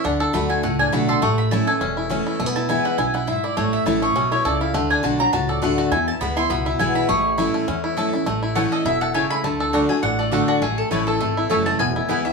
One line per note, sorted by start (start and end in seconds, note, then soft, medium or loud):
0.00 0.27 A3 medium
0.00 0.20 A4 medium
0.04 0.23 D2 medium
0.04 0.32 D3 medium
0.04 0.47 D4 medium
0.04 0.20 F#5 loud
0.20 0.61 A4 medium
0.20 0.33 A5 loud
0.33 0.59 D2 medium
0.33 0.62 D3 medium
0.33 0.62 A3 medium
0.33 0.62 A3 loud
0.33 0.63 D4 loud
0.33 0.63 F#4 loud
0.33 0.49 B5 loud
0.50 0.90 F#4 medium
0.50 0.63 G#5 loud
0.63 0.88 C#2 medium
0.63 1.20 A2 medium
0.63 1.06 A3 medium
0.63 0.79 F#5 medium
0.79 1.20 D4 medium
0.79 0.92 G#5 loud
0.92 1.18 B1 medium
0.92 1.21 D3 loud
0.92 1.21 A3 loud
0.92 1.21 D4 medium
0.92 1.22 F#4 medium
0.92 1.08 B5 loud
1.09 1.22 A4 medium
1.09 1.22 C6 loud
1.22 1.59 A1 medium
1.22 1.78 A2 medium
1.22 1.65 A3 medium
1.22 1.38 C#6 loud
1.38 1.51 B5 loud
1.51 1.67 E3 medium
1.51 1.67 A3 loud
1.51 1.68 C#4 loud
1.51 1.97 E4 medium
1.51 1.66 E4 loud
1.51 1.67 A5 loud
1.67 1.81 C#4 medium
1.67 1.80 E4 medium
1.67 2.08 A4 medium
1.67 1.95 G#5 medium
1.81 2.18 E1 medium
1.81 2.37 E2 loud
1.81 2.09 C#4 medium
1.97 2.26 E4 medium
2.10 2.38 E3 medium
2.10 2.38 A3 medium
2.10 2.40 C#4 medium
2.10 2.39 C#4 loud
2.10 2.39 E4 loud
2.27 2.56 E4 medium
2.40 2.77 E1 loud
2.40 2.96 E2 medium
2.40 2.46 A3 medium
2.46 2.69 B3 medium
2.56 2.68 E4 medium
2.56 2.68 A5 loud
2.69 2.97 E3 medium
2.69 2.97 G#3 medium
2.69 2.98 B3 loud
2.69 2.84 E4 medium
2.69 2.98 E4 medium
2.69 2.84 G#5 loud
2.85 2.97 E4 medium
2.85 2.98 F#5 loud
2.98 3.35 B1 medium
2.98 3.27 F#2 medium
2.98 3.13 E4 medium
2.98 3.14 G#5 loud
3.14 3.27 E4 medium
3.14 3.27 F#5 loud
3.27 3.56 G#2 medium
3.27 3.43 E4 medium
3.27 3.43 E5 medium
3.44 3.57 E4 medium
3.44 3.57 D5 medium
3.57 3.76 A1 medium
3.57 4.13 A2 medium
3.57 3.99 A3 medium
3.57 3.73 C#5 medium
3.73 3.86 E5 loud
3.86 4.11 A1 medium
3.86 4.02 E3 loud
3.86 4.02 A3 loud
3.86 4.02 C#4 loud
3.86 4.29 E4 medium
3.86 4.00 E4 loud
3.86 4.02 A5 loud
4.02 4.42 A3 medium
4.02 4.16 C#4 medium
4.02 4.15 E4 medium
4.02 4.30 C#6 loud
4.16 4.41 B1 medium
4.16 4.44 B2 medium
4.16 4.58 C#4 medium
4.32 4.60 E4 medium
4.32 4.45 C#5 loud
4.45 4.70 C#2 medium
4.45 4.73 C#3 medium
4.45 4.74 A4 medium
4.45 4.60 D5 loud
4.61 4.75 E4 medium
4.61 4.74 F5 medium
4.74 4.93 D2 medium
4.74 5.02 D3 medium
4.74 5.17 A3 medium
4.74 4.90 F#5 loud
4.90 5.31 D4 medium
4.90 5.03 G#5 loud
5.03 5.29 B1 medium
5.03 5.19 D3 medium
5.03 5.19 A3 loud
5.03 5.19 D4 loud
5.03 5.32 F#4 medium
5.03 5.18 F#4 loud
5.03 5.19 A5 loud
5.19 5.60 F#3 medium
5.19 5.33 D4 soft
5.19 5.32 F#4 medium
5.19 5.32 A#5 loud
5.33 5.58 C#2 medium
5.33 5.89 A2 loud
5.33 5.75 F#4 medium
5.33 5.49 A5 loud
5.49 5.89 A4 medium
5.49 5.62 D5 medium
5.62 5.87 D2 medium
5.62 5.90 D3 medium
5.62 5.90 A3 medium
5.62 5.92 A3 medium
5.62 5.91 D4 loud
5.62 5.91 F#4 loud
5.62 5.78 F#5 medium
5.78 5.92 F#4 medium
5.78 5.91 A5 loud
5.91 6.10 E2 medium
5.91 6.48 E2 loud
5.91 6.37 E4 medium
5.91 6.07 G#5 medium
6.08 6.20 A5 loud
6.21 6.46 D2 medium
6.21 6.36 E3 loud
6.21 6.37 G#3 medium
6.21 6.49 B3 medium
6.21 6.37 B3 loud
6.21 6.35 E4 loud
6.21 6.36 B5 loud
6.36 6.51 B3 medium
6.36 6.50 E4 medium
6.36 6.66 E4 medium
6.36 6.49 C6 loud
6.50 6.75 C#2 medium
6.50 7.07 B2 loud
6.50 6.92 B3 medium
6.50 6.66 B5 loud
6.66 6.79 E4 medium
6.66 6.79 E5 medium
6.79 7.05 B1 medium
6.79 7.08 E3 medium
6.79 7.08 G#3 medium
6.79 7.08 B3 loud
6.79 6.95 E4 medium
6.79 7.09 E4 loud
6.79 6.95 G#5 loud
6.95 7.38 E4 medium
6.95 7.08 B5 loud
7.09 7.46 A1 loud
7.09 7.65 A2 loud
7.09 7.51 A3 medium
7.09 7.51 C#6 loud
7.38 7.66 E3 loud
7.38 7.67 A3 loud
7.38 7.67 C#4 loud
7.38 7.80 E4 medium
7.38 7.67 E4 loud
7.54 7.94 A3 medium
7.68 8.05 E2 medium
7.68 8.24 E2 loud
7.68 8.10 C#4 medium
7.84 8.12 E4 medium
7.97 8.12 E3 medium
7.97 8.13 A3 loud
7.97 8.13 C#4 loud
7.97 8.12 E4 loud
7.97 8.27 A4 medium
8.13 8.27 C#4 medium
8.13 8.26 E4 medium
8.13 8.27 E4 medium
8.26 8.64 A1 medium
8.26 8.83 A2 medium
8.26 8.56 A3 medium
8.43 8.83 E4 medium
8.55 8.84 E3 medium
8.55 8.65 A3 medium
8.55 9.30 A3 medium
8.55 8.84 A3 medium
8.55 8.85 C#4 medium
8.55 8.66 E4 medium
8.55 8.85 E4 loud
8.55 8.66 C#5 loud
8.55 8.71 F#5 medium
8.55 8.66 A5 loud
8.72 9.01 A4 medium
8.72 8.85 D#5 medium
8.85 9.23 E1 medium
8.85 9.14 B2 medium
8.85 9.14 E4 medium
8.85 9.01 E5 medium
9.01 9.60 A4 medium
9.01 9.14 F#5 medium
9.14 9.43 C#3 medium
9.14 9.24 A3 medium
9.14 9.24 E4 medium
9.14 9.44 E4 medium
9.14 9.25 C#5 loud
9.14 9.30 G#5 medium
9.14 9.25 A5 medium
9.30 9.44 A3 medium
9.30 9.44 B5 loud
9.44 9.81 D2 medium
9.44 9.72 D3 medium
9.44 9.87 A3 medium
9.44 9.86 A5 medium
9.60 10.01 A4 medium
9.73 9.89 D3 medium
9.73 9.83 A3 medium
9.73 9.89 A3 medium
9.73 10.02 D4 medium
9.73 9.89 D4 medium
9.73 9.83 F#4 medium
9.73 9.88 F#4 medium
9.73 9.84 D5 loud
9.73 9.84 F#5 loud
9.89 10.18 A3 medium
9.89 10.03 D4 soft
9.89 10.02 F#4 medium
9.89 10.02 G#5 medium
10.03 10.40 A1 medium
10.03 10.59 A2 medium
10.03 10.45 D4 medium
10.03 10.18 F#5 medium
10.19 10.60 A3 medium
10.19 10.32 D5 medium
10.32 10.60 D3 medium
10.32 10.42 A3 medium
10.32 10.61 A3 medium
10.32 10.61 D4 loud
10.32 10.42 F#4 medium
10.32 10.62 F#4 medium
10.32 10.61 F#4 loud
10.32 10.48 A4 medium
10.32 10.42 D5 medium
10.32 10.43 F#5 loud
10.48 10.62 D4 medium
10.48 10.61 F#4 medium
10.62 10.81 A1 medium
10.62 11.18 A2 medium
10.62 11.04 A3 medium
10.62 10.78 G#4 medium
10.78 10.90 A4 medium
10.91 11.16 A1 medium
10.91 11.19 E3 medium
10.91 11.01 A3 medium
10.91 11.20 A3 medium
10.91 11.20 C#4 medium
10.91 11.01 E4 medium
10.91 11.37 E4 medium
10.91 11.20 E4 loud
10.91 11.06 B4 medium
10.91 11.01 C#5 loud
10.91 11.02 A5 loud
11.07 11.47 A4 medium
11.07 11.48 A4 medium
11.20 11.46 G#1 medium
11.20 11.77 E2 medium
11.20 11.63 A3 medium
11.37 11.96 E4 medium
11.49 11.75 F#1 medium
11.49 11.78 E3 medium
11.49 11.60 A3 medium
11.49 11.79 A3 loud
11.49 11.79 C#4 loud
11.49 11.60 E4 loud
11.49 11.79 E4 loud
11.49 11.80 A4 medium
11.49 11.60 C#5 medium
11.49 11.60 A5 medium
11.66 11.80 A3 medium
11.66 11.79 A5 medium
11.79 11.99 E1 medium
11.79 12.33 E2 medium
11.79 12.22 B3 medium
11.79 12.22 G#5 loud
11.96 12.08 E4 medium
12.09 12.33 D2 medium
12.09 12.24 E3 medium
12.09 12.25 G#3 medium
12.09 12.19 B3 medium
12.09 12.25 B3 medium
12.09 12.19 E4 loud
12.09 12.25 E4 medium
12.09 12.23 E4 loud
12.09 12.19 B4 medium
12.09 12.19 G#5 loud
12.25 12.33 B3 soft
12.25 12.33 E4 medium
12.25 12.33 E5 medium